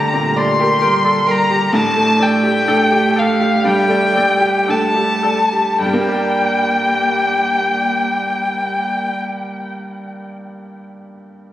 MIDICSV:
0, 0, Header, 1, 6, 480
1, 0, Start_track
1, 0, Key_signature, -2, "minor"
1, 0, Tempo, 916031
1, 916, Time_signature, 4, 2, 24, 8
1, 916, Tempo, 952381
1, 1876, Tempo, 1032702
1, 2356, Tempo, 1117318
1, 2836, Tempo, 1084991
1, 5369, End_track
2, 0, Start_track
2, 0, Title_t, "Violin"
2, 0, Program_c, 0, 40
2, 0, Note_on_c, 0, 82, 101
2, 193, Note_on_c, 0, 84, 116
2, 201, Note_off_c, 0, 82, 0
2, 688, Note_on_c, 0, 82, 123
2, 696, Note_off_c, 0, 84, 0
2, 919, Note_off_c, 0, 82, 0
2, 922, Note_on_c, 0, 81, 127
2, 1156, Note_on_c, 0, 79, 127
2, 1164, Note_off_c, 0, 81, 0
2, 1643, Note_on_c, 0, 77, 123
2, 1650, Note_off_c, 0, 79, 0
2, 1881, Note_off_c, 0, 77, 0
2, 1884, Note_on_c, 0, 79, 127
2, 2364, Note_on_c, 0, 81, 110
2, 2370, Note_off_c, 0, 79, 0
2, 2837, Note_off_c, 0, 81, 0
2, 2840, Note_on_c, 0, 79, 102
2, 4323, Note_off_c, 0, 79, 0
2, 5369, End_track
3, 0, Start_track
3, 0, Title_t, "Harp"
3, 0, Program_c, 1, 46
3, 0, Note_on_c, 1, 67, 106
3, 0, Note_on_c, 1, 74, 74
3, 0, Note_on_c, 1, 79, 63
3, 68, Note_off_c, 1, 79, 0
3, 74, Note_on_c, 1, 79, 68
3, 183, Note_off_c, 1, 74, 0
3, 189, Note_on_c, 1, 74, 87
3, 311, Note_on_c, 1, 70, 84
3, 420, Note_off_c, 1, 67, 0
3, 427, Note_on_c, 1, 67, 116
3, 540, Note_off_c, 1, 74, 0
3, 546, Note_on_c, 1, 74, 82
3, 661, Note_off_c, 1, 79, 0
3, 668, Note_on_c, 1, 79, 81
3, 912, Note_on_c, 1, 62, 121
3, 934, Note_off_c, 1, 70, 0
3, 1025, Note_off_c, 1, 67, 0
3, 1031, Note_on_c, 1, 67, 75
3, 1146, Note_on_c, 1, 69, 87
3, 1377, Note_off_c, 1, 62, 0
3, 1383, Note_on_c, 1, 62, 116
3, 1499, Note_off_c, 1, 67, 0
3, 1505, Note_on_c, 1, 67, 90
3, 1623, Note_off_c, 1, 69, 0
3, 1629, Note_on_c, 1, 69, 79
3, 1868, Note_off_c, 1, 62, 0
3, 1874, Note_on_c, 1, 62, 116
3, 1986, Note_off_c, 1, 74, 0
3, 1991, Note_on_c, 1, 74, 77
3, 2105, Note_off_c, 1, 69, 0
3, 2111, Note_on_c, 1, 69, 78
3, 2228, Note_off_c, 1, 67, 0
3, 2233, Note_on_c, 1, 67, 73
3, 2351, Note_off_c, 1, 62, 0
3, 2356, Note_on_c, 1, 62, 114
3, 2468, Note_off_c, 1, 69, 0
3, 2473, Note_on_c, 1, 69, 65
3, 2566, Note_off_c, 1, 79, 0
3, 2590, Note_off_c, 1, 74, 0
3, 2595, Note_on_c, 1, 74, 62
3, 2855, Note_off_c, 1, 69, 0
3, 3950, Note_off_c, 1, 67, 0
3, 4067, Note_off_c, 1, 62, 0
3, 4314, Note_off_c, 1, 74, 0
3, 5369, End_track
4, 0, Start_track
4, 0, Title_t, "Ambient pad"
4, 0, Program_c, 2, 92
4, 0, Note_on_c, 2, 55, 84
4, 0, Note_on_c, 2, 67, 87
4, 0, Note_on_c, 2, 74, 81
4, 895, Note_off_c, 2, 67, 0
4, 895, Note_off_c, 2, 74, 0
4, 896, Note_off_c, 2, 55, 0
4, 915, Note_on_c, 2, 67, 93
4, 915, Note_on_c, 2, 74, 99
4, 917, Note_on_c, 2, 69, 105
4, 2819, Note_off_c, 2, 67, 0
4, 2819, Note_off_c, 2, 74, 0
4, 2837, Note_off_c, 2, 69, 0
4, 2839, Note_on_c, 2, 58, 93
4, 2839, Note_on_c, 2, 67, 91
4, 2839, Note_on_c, 2, 74, 99
4, 4322, Note_off_c, 2, 58, 0
4, 4322, Note_off_c, 2, 67, 0
4, 4322, Note_off_c, 2, 74, 0
4, 5369, End_track
5, 0, Start_track
5, 0, Title_t, "Grand piano"
5, 0, Program_c, 3, 0
5, 0, Control_c, 3, 64, 127
5, 0, Note_on_c, 3, 43, 85
5, 0, Note_on_c, 3, 50, 67
5, 0, Note_on_c, 3, 58, 54
5, 0, Note_on_c, 3, 67, 68
5, 0, Note_on_c, 3, 69, 58
5, 0, Note_on_c, 3, 70, 66
5, 0, Note_on_c, 3, 74, 65
5, 72, Note_on_c, 3, 46, 59
5, 146, Note_off_c, 3, 50, 0
5, 190, Note_off_c, 3, 74, 0
5, 190, Note_on_c, 3, 74, 84
5, 263, Note_off_c, 3, 46, 0
5, 314, Note_off_c, 3, 67, 0
5, 314, Note_on_c, 3, 67, 77
5, 382, Note_off_c, 3, 74, 0
5, 427, Note_off_c, 3, 70, 0
5, 427, Note_on_c, 3, 70, 76
5, 505, Note_off_c, 3, 67, 0
5, 551, Note_off_c, 3, 69, 0
5, 551, Note_on_c, 3, 69, 66
5, 623, Note_off_c, 3, 70, 0
5, 662, Note_on_c, 3, 70, 89
5, 673, Note_off_c, 3, 69, 0
5, 789, Note_on_c, 3, 67, 69
5, 862, Note_off_c, 3, 70, 0
5, 905, Note_on_c, 3, 45, 106
5, 913, Note_off_c, 3, 67, 0
5, 926, Control_c, 3, 64, 0
5, 928, Note_off_c, 3, 43, 0
5, 928, Note_off_c, 3, 58, 0
5, 1022, Control_c, 3, 64, 127
5, 1023, Note_on_c, 3, 57, 75
5, 1143, Note_on_c, 3, 74, 90
5, 1216, Note_off_c, 3, 57, 0
5, 1262, Note_on_c, 3, 67, 78
5, 1336, Note_off_c, 3, 74, 0
5, 1384, Note_on_c, 3, 69, 89
5, 1457, Note_off_c, 3, 67, 0
5, 1505, Note_on_c, 3, 67, 69
5, 1579, Note_off_c, 3, 69, 0
5, 1627, Note_on_c, 3, 69, 69
5, 1628, Note_off_c, 3, 67, 0
5, 1753, Note_on_c, 3, 67, 78
5, 1826, Note_off_c, 3, 69, 0
5, 1851, Note_off_c, 3, 45, 0
5, 1871, Note_on_c, 3, 55, 78
5, 1946, Note_off_c, 3, 67, 0
5, 1984, Note_on_c, 3, 57, 72
5, 2062, Note_off_c, 3, 55, 0
5, 2106, Note_on_c, 3, 74, 74
5, 2180, Note_off_c, 3, 57, 0
5, 2225, Note_on_c, 3, 67, 72
5, 2304, Note_off_c, 3, 74, 0
5, 2352, Note_on_c, 3, 69, 61
5, 2423, Note_off_c, 3, 67, 0
5, 2466, Note_on_c, 3, 67, 60
5, 2544, Note_off_c, 3, 69, 0
5, 2589, Note_on_c, 3, 69, 72
5, 2592, Note_off_c, 3, 67, 0
5, 2716, Note_on_c, 3, 67, 50
5, 2786, Note_off_c, 3, 69, 0
5, 2833, Note_on_c, 3, 43, 69
5, 2836, Note_off_c, 3, 67, 0
5, 2846, Control_c, 3, 64, 0
5, 2860, Note_on_c, 3, 55, 70
5, 2894, Note_on_c, 3, 58, 78
5, 2923, Note_on_c, 3, 67, 71
5, 2947, Control_c, 3, 64, 127
5, 2957, Note_on_c, 3, 74, 65
5, 2986, Note_on_c, 3, 79, 68
5, 4316, Note_off_c, 3, 43, 0
5, 4344, Note_off_c, 3, 55, 0
5, 4377, Note_off_c, 3, 58, 0
5, 4406, Note_off_c, 3, 67, 0
5, 4440, Note_off_c, 3, 74, 0
5, 4469, Note_off_c, 3, 79, 0
5, 5369, End_track
6, 0, Start_track
6, 0, Title_t, "Cello"
6, 0, Program_c, 4, 42
6, 0, Note_on_c, 4, 57, 80
6, 427, Note_on_c, 4, 55, 96
6, 435, Note_off_c, 4, 57, 0
6, 666, Note_off_c, 4, 55, 0
6, 669, Note_on_c, 4, 55, 89
6, 909, Note_off_c, 4, 55, 0
6, 914, Note_on_c, 4, 57, 94
6, 1377, Note_off_c, 4, 57, 0
6, 1384, Note_on_c, 4, 57, 115
6, 1879, Note_on_c, 4, 55, 109
6, 1886, Note_off_c, 4, 57, 0
6, 2118, Note_on_c, 4, 58, 90
6, 2125, Note_off_c, 4, 55, 0
6, 2362, Note_on_c, 4, 57, 86
6, 2368, Note_off_c, 4, 58, 0
6, 2733, Note_off_c, 4, 57, 0
6, 2839, Note_on_c, 4, 58, 81
6, 4323, Note_off_c, 4, 58, 0
6, 5369, End_track
0, 0, End_of_file